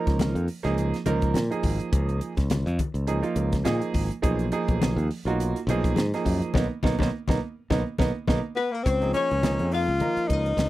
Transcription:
Already playing: grand piano F3 A#3 D#4 A#4
0.07 fingered electric bass C#2, kick, snare, closed hi-hat
0.19 snare, closed hi-hat, muted conga, high conga
0.35 fingered electric bass F2, closed hi-hat
0.48 open hi-hat
0.63 fingered electric bass C#2, grand piano F3 A#3 D#4 G#4, snare, closed hi-hat
0.77 closed hi-hat, muted conga
0.94 snare, closed hi-hat
1.06 fingered electric bass C#2, grand piano F3 A#3 D#4 A#4, closed hi-hat, high conga
1.22 kick, closed hi-hat
1.34 fingered electric bass A#2, snare, closed hi-hat, high conga
1.50 grand piano F3 A#3 D#4 G#4, closed hi-hat
1.63 fingered electric bass G#1, kick, open hi-hat
1.80 muted fingered electric bass stroke, closed hi-hat
1.93 fingered electric bass C#2, kick, closed hi-hat, muted conga
2.09 closed hi-hat
2.21 closed hi-hat
2.37 fingered electric bass C#2, kick, snare, closed hi-hat
2.50 snare, closed hi-hat, muted conga, high conga
2.66 fingered electric bass F2, closed hi-hat
2.79 kick, closed hi-hat, high conga
2.94 fingered electric bass C#2, closed hi-hat
3.07 grand piano F3 A#3 D#4 G#4, closed hi-hat, muted conga
3.22 grand piano F3 A#3 D#4 F4, closed hi-hat
3.36 fingered electric bass C#2, closed hi-hat
3.52 kick, snare, closed hi-hat
3.64 fingered electric bass A#2, grand piano F3 A#3 D#4 G#4, snare, closed hi-hat, high conga, low conga
3.81 closed hi-hat
3.94 fingered electric bass G#1, kick, open hi-hat
4.10 muted fingered electric bass stroke, closed hi-hat
4.22 fingered electric bass B1, grand piano F3 A#3 D#4 G#4, kick, closed hi-hat, muted conga
4.39 closed hi-hat
4.52 grand piano F3 A#3 D#4 G#4, closed hi-hat
4.68 fingered electric bass B1, kick, closed hi-hat
4.82 snare, closed hi-hat, muted conga, high conga
4.96 fingered electric bass D#2, closed hi-hat
5.11 open hi-hat
5.25 fingered electric bass B1, grand piano A#3 D#4 F4 F#4, closed hi-hat
5.40 closed hi-hat, muted conga
5.56 closed hi-hat
5.67 fingered electric bass B1, grand piano F3 A#3 D#4 G#4, closed hi-hat, muted conga, high conga
5.84 kick, closed hi-hat
5.96 fingered electric bass G#2, snare, closed hi-hat, high conga
6.14 grand piano F3 A#3 D#4 G#4, snare, closed hi-hat
6.25 fingered electric bass F#2, kick, open hi-hat
6.41 muted fingered electric bass stroke, closed hi-hat
6.54 fingered electric bass B1, grand piano A#3 B3 D#4, kick, snare, high conga
6.83 fingered electric bass B1, grand piano A#3 B3 D#4, kick, snare, high conga
6.99 fingered electric bass B1, grand piano A#3 B3 D#4, kick, snare, high conga
7.28 fingered electric bass B1, grand piano A#3 B3 D#4, kick, snare, high conga
7.70 fingered electric bass B1, grand piano A#3 B3 D#4, kick, snare, high conga
7.98 fingered electric bass B1, grand piano A#3 B3 D#4, kick, snare, high conga
8.27 fingered electric bass B1, grand piano A#3 B3 D#4, kick, snare, high conga
8.56 tenor saxophone B3, hollow-body jazz guitar B4
8.71 tenor saxophone A#3, hollow-body jazz guitar A#4
8.83 fingered electric bass C#2, tenor saxophone C4, hollow-body jazz guitar C5, kick, closed hi-hat, muted conga
9.01 grand piano F3 A#3 D#4 G#4, closed hi-hat
9.14 tenor saxophone C#4, hollow-body jazz guitar C#5, closed hi-hat, muted conga
9.31 fingered electric bass C#2, closed hi-hat
9.42 grand piano F3 A#3 D#4 G#4, snare, closed hi-hat, high conga
9.59 fingered electric bass F2, closed hi-hat
9.72 tenor saxophone F4, hollow-body jazz guitar F5, open hi-hat
9.88 fingered electric bass C#2
10.00 grand piano F3 A#3 D#4 A#4, closed hi-hat, muted conga, high conga
10.17 muted fingered electric bass stroke, closed hi-hat
10.28 fingered electric bass C#2, tenor saxophone D#4, kick, closed hi-hat
10.33 hollow-body jazz guitar D#5
10.46 closed hi-hat
10.57 fingered electric bass C#2, snare, closed hi-hat, muted conga, high conga

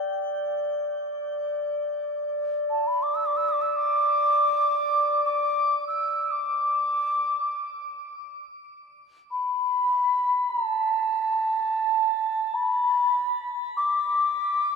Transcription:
Already playing: glass harmonica D5, bansuri G5
2.71 bansuri A5
2.87 bansuri B5
3.03 bansuri D6
3.15 bansuri E6
3.26 bansuri D6
3.37 bansuri E6
3.49 bansuri D6
3.62 bansuri E6
3.76 bansuri D6
5.25 bansuri D6
5.87 bansuri E6
6.31 bansuri D6
9.31 bansuri B5
10.50 bansuri A5
12.54 bansuri B5
13.77 bansuri D6

